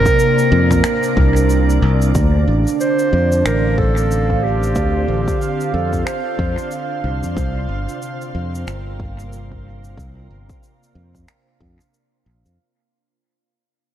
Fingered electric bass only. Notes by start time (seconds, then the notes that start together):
0.52 F2
1.17 C2
1.82 C2
2.15 D2
2.48 A1
3.13 F2
3.46 A1
4.76 D2
5.08 A1
5.74 F2
6.39 F2
7.04 C2
7.23 F2
7.37 C2
7.69 G1
8.35 F2
8.67 G1
9.98 C2
10.30 G1
10.95 F2
11.61 F2
12.26 A#1
12.46 F2